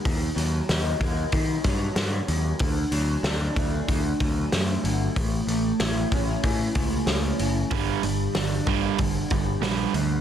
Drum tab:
HH |oooooooo|oooooooo|oooooooo|oooooooo|
SD |--o---o-|--o---o-|--o---o-|--o---o-|
BD |o--ooo--|o--ooo--|o--ooo--|o--ooo--|